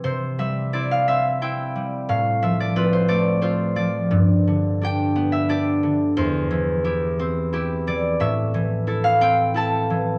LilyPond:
\new Staff \with { instrumentName = "Harp" } { \time 3/4 \key c \major \tempo 4 = 88 << { c''8 e''8 d''16 f''16 e''8 g''4 | f''8 e''16 d''16 b'16 c''16 d''8 c''8 d''8~ | d''4 g''8. e''16 d''4 | c''2~ c''8 d''8 |
e''4~ e''16 f''16 g''8 a''4 | } \\ { <c c' g'>8 g8 <c' e'>8 c'8 <c' e'>8 g8 | a,8 f8 <c' f'>8 a8 <c' f'>8 f8 | g,8 d8 <d' g'>8 b8 <d' g'>8 d8 | e,8 e8 <e' g'>8 c'8 <e' g'>8 e8 |
a,8 e8 <e' a'>8 c'8 <e' a'>8 e8 | } >> }